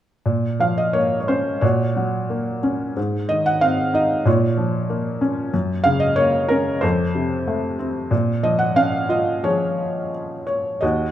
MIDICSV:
0, 0, Header, 1, 2, 480
1, 0, Start_track
1, 0, Key_signature, -5, "minor"
1, 0, Tempo, 678733
1, 183, Time_signature, 4, 2, 24, 8
1, 2103, Tempo, 643777
1, 6423, Tempo, 685714
1, 8065, End_track
2, 0, Start_track
2, 0, Title_t, "Felt piano"
2, 0, Program_c, 0, 0
2, 181, Note_on_c, 0, 46, 44
2, 304, Control_c, 0, 64, 127
2, 421, Note_on_c, 0, 53, 35
2, 428, Note_on_c, 0, 77, 69
2, 549, Note_on_c, 0, 75, 62
2, 552, Note_off_c, 0, 77, 0
2, 660, Note_on_c, 0, 73, 68
2, 667, Note_on_c, 0, 58, 38
2, 673, Note_off_c, 0, 75, 0
2, 840, Note_off_c, 0, 73, 0
2, 851, Note_on_c, 0, 73, 43
2, 906, Note_off_c, 0, 73, 0
2, 906, Note_on_c, 0, 72, 62
2, 909, Note_on_c, 0, 61, 36
2, 1122, Note_off_c, 0, 46, 0
2, 1127, Note_off_c, 0, 53, 0
2, 1135, Note_off_c, 0, 58, 0
2, 1140, Note_on_c, 0, 73, 59
2, 1142, Note_off_c, 0, 61, 0
2, 1146, Note_on_c, 0, 46, 54
2, 1155, Note_off_c, 0, 72, 0
2, 1155, Note_on_c, 0, 66, 41
2, 1159, Control_c, 0, 64, 0
2, 1275, Control_c, 0, 64, 127
2, 1388, Note_on_c, 0, 54, 40
2, 1625, Note_on_c, 0, 58, 39
2, 1835, Note_off_c, 0, 73, 0
2, 1861, Note_on_c, 0, 61, 46
2, 2071, Note_off_c, 0, 46, 0
2, 2076, Note_off_c, 0, 66, 0
2, 2080, Note_off_c, 0, 54, 0
2, 2085, Note_off_c, 0, 58, 0
2, 2091, Note_off_c, 0, 61, 0
2, 2096, Note_on_c, 0, 44, 49
2, 2112, Control_c, 0, 64, 0
2, 2230, Control_c, 0, 64, 127
2, 2337, Note_on_c, 0, 75, 73
2, 2341, Note_on_c, 0, 51, 42
2, 2464, Note_off_c, 0, 75, 0
2, 2464, Note_on_c, 0, 78, 76
2, 2575, Note_off_c, 0, 78, 0
2, 2580, Note_on_c, 0, 60, 42
2, 2580, Note_on_c, 0, 77, 79
2, 2802, Note_off_c, 0, 77, 0
2, 2819, Note_on_c, 0, 63, 42
2, 2828, Note_on_c, 0, 75, 74
2, 3028, Note_off_c, 0, 44, 0
2, 3037, Note_off_c, 0, 51, 0
2, 3044, Note_off_c, 0, 60, 0
2, 3052, Note_off_c, 0, 63, 0
2, 3059, Note_on_c, 0, 46, 57
2, 3070, Control_c, 0, 64, 0
2, 3070, Note_on_c, 0, 65, 43
2, 3071, Note_off_c, 0, 75, 0
2, 3071, Note_on_c, 0, 73, 52
2, 3187, Control_c, 0, 64, 127
2, 3297, Note_on_c, 0, 53, 39
2, 3536, Note_on_c, 0, 58, 39
2, 3752, Note_off_c, 0, 73, 0
2, 3772, Note_on_c, 0, 61, 45
2, 3986, Note_off_c, 0, 46, 0
2, 3991, Note_off_c, 0, 65, 0
2, 3992, Note_off_c, 0, 53, 0
2, 4000, Note_off_c, 0, 58, 0
2, 4006, Note_off_c, 0, 61, 0
2, 4014, Note_on_c, 0, 42, 52
2, 4023, Control_c, 0, 64, 0
2, 4138, Control_c, 0, 64, 127
2, 4237, Note_on_c, 0, 77, 83
2, 4249, Note_on_c, 0, 49, 43
2, 4358, Note_on_c, 0, 75, 72
2, 4370, Note_off_c, 0, 77, 0
2, 4478, Note_on_c, 0, 73, 83
2, 4490, Note_on_c, 0, 58, 44
2, 4492, Note_off_c, 0, 75, 0
2, 4712, Note_off_c, 0, 73, 0
2, 4721, Note_on_c, 0, 70, 77
2, 4738, Note_on_c, 0, 61, 47
2, 4951, Note_off_c, 0, 42, 0
2, 4954, Note_off_c, 0, 70, 0
2, 4957, Note_off_c, 0, 49, 0
2, 4963, Note_off_c, 0, 58, 0
2, 4964, Note_on_c, 0, 72, 64
2, 4974, Note_off_c, 0, 61, 0
2, 4974, Note_on_c, 0, 69, 46
2, 4977, Note_on_c, 0, 41, 61
2, 4991, Control_c, 0, 64, 0
2, 5121, Control_c, 0, 64, 127
2, 5217, Note_on_c, 0, 48, 45
2, 5459, Note_on_c, 0, 57, 42
2, 5664, Note_off_c, 0, 72, 0
2, 5694, Note_on_c, 0, 60, 47
2, 5906, Note_off_c, 0, 69, 0
2, 5909, Note_off_c, 0, 41, 0
2, 5916, Note_off_c, 0, 48, 0
2, 5924, Note_off_c, 0, 57, 0
2, 5929, Note_off_c, 0, 60, 0
2, 5932, Note_on_c, 0, 46, 54
2, 5951, Control_c, 0, 64, 0
2, 6075, Control_c, 0, 64, 127
2, 6173, Note_on_c, 0, 53, 40
2, 6174, Note_on_c, 0, 75, 68
2, 6288, Note_on_c, 0, 78, 73
2, 6302, Note_off_c, 0, 75, 0
2, 6416, Note_on_c, 0, 61, 40
2, 6419, Note_on_c, 0, 77, 81
2, 6420, Note_off_c, 0, 78, 0
2, 6637, Note_off_c, 0, 77, 0
2, 6649, Note_on_c, 0, 65, 42
2, 6654, Note_on_c, 0, 75, 70
2, 6878, Note_off_c, 0, 53, 0
2, 6889, Note_on_c, 0, 53, 45
2, 6892, Note_on_c, 0, 73, 59
2, 6894, Note_on_c, 0, 68, 39
2, 6897, Note_off_c, 0, 75, 0
2, 7344, Note_off_c, 0, 61, 0
2, 7589, Note_off_c, 0, 65, 0
2, 7593, Note_off_c, 0, 73, 0
2, 7612, Note_on_c, 0, 73, 52
2, 7830, Note_off_c, 0, 46, 0
2, 7833, Note_off_c, 0, 53, 0
2, 7836, Note_off_c, 0, 68, 0
2, 7850, Note_on_c, 0, 75, 61
2, 7861, Note_on_c, 0, 39, 51
2, 7865, Note_off_c, 0, 73, 0
2, 7865, Note_on_c, 0, 66, 48
2, 7870, Control_c, 0, 64, 0
2, 8011, Control_c, 0, 64, 127
2, 8065, Note_off_c, 0, 39, 0
2, 8065, Note_off_c, 0, 66, 0
2, 8065, Note_off_c, 0, 75, 0
2, 8065, End_track
0, 0, End_of_file